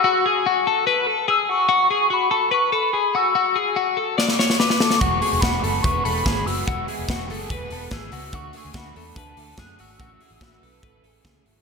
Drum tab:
HH |----------------|----------------|----------------|x-o-x-o-x-o-x-o-|
SD |----------------|----------------|--------oooooooo|----o-------o---|
BD |----------------|----------------|----------------|o---o---o---o---|

HH |--o-x-o-x-o-x-o-|x-o-x-o-x-o-x-o-|x-o-x-o-x-o-x-o-|
SD |----o-------o---|----o-------o---|----o-------o---|
BD |o---o---o---o---|o---o---o---o---|o---o---o---o---|